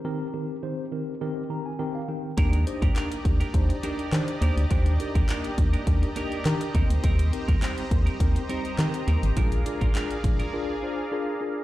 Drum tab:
HH |----------------|xxxxxxxxxxxxxxxx|xxxxxxxxxxxxxxxx|xxxxxxxxxxxxxxxx|
CP |----------------|----x-------x---|----x-------x---|----x-------x---|
BD |----------------|o--o--o-o-------|o--o--o-o-----o-|o--o--o-o-------|

HH |xxxxxxxx--------|
CP |----x-----------|
BD |o--o--o---------|